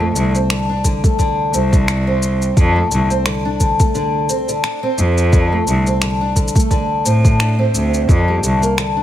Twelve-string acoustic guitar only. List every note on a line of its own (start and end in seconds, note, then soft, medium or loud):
0.00 0.14 A3 medium
0.15 0.34 D3 medium
0.35 0.48 C4 medium
0.50 0.67 D3 medium
0.69 0.83 D4 medium
0.84 1.02 D3 medium
1.04 1.17 A3 medium
1.19 1.52 D3 loud
1.54 1.72 C4 medium
1.73 1.86 D3 medium
1.88 2.06 D4 medium
2.07 2.55 C4 medium
2.57 2.74 D3 medium
2.76 2.90 A3 medium
2.91 3.10 D3 medium
3.10 3.24 C4 medium
3.26 3.43 D3 medium
3.45 3.59 D4 medium
3.60 3.78 D3 medium
3.80 3.93 A3 medium
3.95 4.28 D3 medium
4.29 4.48 C4 medium
4.49 4.62 D3 medium
4.64 4.82 D4 medium
4.83 5.31 C4 medium
5.33 5.50 D3 medium
5.52 5.66 A3 medium
5.67 5.86 D3 medium
5.87 6.00 C4 medium
6.02 6.19 D3 medium
6.21 6.35 D4 medium
6.36 6.54 D3 medium
6.55 6.69 A3 medium
6.71 7.04 D3 loud
7.05 7.24 C4 medium
7.24 7.38 D3 medium
7.39 7.58 D4 medium
7.59 8.07 C4 medium
8.09 8.26 D3 medium
8.28 8.42 G3 medium
8.43 8.61 D3 medium
8.62 8.76 A#3 medium
8.77 8.95 D3 medium
8.97 9.03 D4 medium